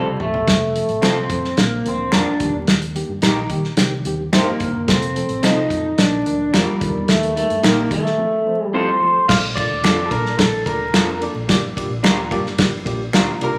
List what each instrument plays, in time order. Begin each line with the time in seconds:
Already playing: fingered electric bass C2, clean electric guitar G3 A4, vibraphone G4
0.18 fingered electric bass A1, reed electric piano F3 A3 C4 A4, clean electric guitar A3, vibraphone A4, floor tom
0.34 floor tom
0.46 fingered electric bass F1, reed electric piano F3 A3 C4 A4, kick, snare, closed hi-hat
0.74 reed electric piano F3 A3 C4 A4, closed hi-hat
0.89 fingered electric bass A1, closed hi-hat
1.02 fingered electric bass C2, reed electric piano F3 A3 C4 A4, clean electric guitar C4 F4 A4, finger snap, snare, closed hi-hat
1.30 fingered electric bass F2, reed electric piano F3 A3 C4 A4, kick, closed hi-hat
1.44 snare
1.57 fingered electric bass A#1, reed electric piano F3 A#3 D4 A#4, clean electric guitar A#3, vibraphone A#4, snare, closed hi-hat
1.84 fingered electric bass D2, reed electric piano F3 A#3 D4 A#4, clean electric guitar C4, vibraphone C5, closed hi-hat
2.12 fingered electric bass F2, reed electric piano F3 A#3 D4 A#4, clean electric guitar D4 F4 A#4, vibraphone D5, finger snap, snare, closed hi-hat
2.39 fingered electric bass D#2, reed electric piano D#3 G3 A#3 G4, kick, closed hi-hat
2.54 fingered electric bass E2
2.67 fingered electric bass D#2, snare, closed hi-hat
2.82 closed hi-hat
2.95 reed electric piano D#3 G3 A#3 G4, closed hi-hat
3.09 fingered electric bass G2
3.22 fingered electric bass A#1, reed electric piano D#3 G3 A#3 G4, clean electric guitar D#4 G4 A#4, finger snap, snare, closed hi-hat
3.50 fingered electric bass D#3, reed electric piano D#3 G3 A#3 G4, kick, closed hi-hat
3.64 snare
3.77 fingered electric bass C2, reed electric piano D#3 G3 C4 G4, snare, closed hi-hat
4.05 fingered electric bass D#2, reed electric piano D#3 G3 C4 G4, closed hi-hat
4.33 fingered electric bass G2, reed electric piano D#3 G3 C4 D4, clean electric guitar A#3 D#4 G4 C5, vibraphone A#4, finger snap, snare, closed hi-hat
4.60 fingered electric bass G1, reed electric piano D#3 G3 C4 D4, kick, closed hi-hat
4.74 fingered electric bass F#1
4.87 fingered electric bass F1, reed electric piano F3 A3 C4 A4, clean electric guitar C4, vibraphone C5, kick, snare, closed hi-hat
5.02 closed hi-hat
5.15 reed electric piano F3 A3 C4 A4, closed hi-hat
5.29 fingered electric bass A1, closed hi-hat
5.42 fingered electric bass C2, reed electric piano F3 A3 C4 A4, clean electric guitar C4 D#4 F4 A4, vibraphone D#5, finger snap, snare, closed hi-hat
5.70 fingered electric bass F2, reed electric piano F3 A3 C4 A4, kick, closed hi-hat
5.97 fingered electric bass A#1, reed electric piano F3 A#3 D4 A#4, clean electric guitar D4, vibraphone D5, snare, closed hi-hat
6.25 fingered electric bass D2, reed electric piano F3 A#3 D4 A#4, closed hi-hat
6.53 fingered electric bass F2, reed electric piano F3 A#3 D4 A#4, clean electric guitar G3 D4 F4 A#4, vibraphone G4, finger snap, snare, closed hi-hat
6.81 fingered electric bass D#2, reed electric piano G3 A#3 D#4 A4, kick, closed hi-hat
6.89 reed electric piano A#4
6.95 fingered electric bass E2
7.07 fingered electric bass D#2, clean electric guitar A3, vibraphone A4, snare, closed hi-hat
7.23 closed hi-hat
7.35 reed electric piano G3 A#3 D#4 A#4, clean electric guitar A3, vibraphone A4, closed hi-hat
7.50 fingered electric bass G2, closed hi-hat
7.63 fingered electric bass A#1, reed electric piano G3 A#3 D#4 A#4, clean electric guitar A#3 D#4 G4 A#4, vibraphone A#4, finger snap, snare, closed hi-hat
7.90 fingered electric bass D#3, reed electric piano G3 A#3 D#4 A#4, clean electric guitar A3, vibraphone A4, kick, closed hi-hat
8.06 snare
8.17 reed electric piano F3 A3 C4 A4
8.46 reed electric piano F3 A3 C4 C5
8.65 clean electric guitar G3
8.73 reed electric piano F3 A3 C4 G4, clean electric guitar C4 F4 A4 C5, vibraphone C6
9.00 reed electric piano F3 A3 C4 A4
9.28 fingered electric bass A#1, reed electric piano A#3 D4 F4 A4 D5, clean electric guitar F5, vibraphone F6, kick, snare, crash
9.55 reed electric piano A#3 D4 F4 A4 D5, clean electric guitar D5, vibraphone D6, kick, ride
9.71 fingered electric bass D2
9.84 fingered electric bass F2, reed electric piano A#3 D4 F4 A4 D5, clean electric guitar D4 F4 A4, finger snap, snare, ride
10.06 clean electric guitar A4, vibraphone A5
10.11 fingered electric bass A#2, reed electric piano A#3 D4 F4 A4 D5, clean electric guitar A#4, vibraphone A#5, kick, ride
10.26 snare
10.38 fingered electric bass A#1, reed electric piano A#3 D4 F4 A4 D5, clean electric guitar A4, kick, snare, ride
10.66 fingered electric bass D2, reed electric piano A#3 D4 F4 A4 D5, clean electric guitar A#4, vibraphone A#5, kick, ride
10.94 fingered electric bass F2, reed electric piano A#3 D4 F4 A4 D5, clean electric guitar D4 F4 A4, finger snap, snare, ride
11.21 reed electric piano A#3 D4 F4 A4 D5, ride
11.35 fingered electric bass A#1
11.48 fingered electric bass G1, reed electric piano A#3 D4 F4 G4 D5, kick, snare, ride
11.76 reed electric piano A#3 D4 F4 G4 D5, kick, ride
11.89 fingered electric bass A#1
12.03 fingered electric bass D2, reed electric piano A#3 D4 F4 G4 D5, clean electric guitar D4 F4 A#4, finger snap, snare, ride
12.31 fingered electric bass G2, reed electric piano A#3 D4 F4 G4 D5, kick, ride
12.46 snare
12.58 fingered electric bass G1, reed electric piano A#3 D4 F4 G4 D5, kick, snare, ride
12.85 fingered electric bass A#1, reed electric piano A#3 D4 F4 G4 D5, kick, ride
13.13 fingered electric bass D2, reed electric piano A#3 D4 F4 G4 F5, clean electric guitar D4 F4 A#4, finger snap, snare, ride
13.41 fingered electric bass C2, reed electric piano A#3 D4 F4 G4 D5, clean electric guitar A#4, vibraphone A#5, ride
13.55 fingered electric bass B1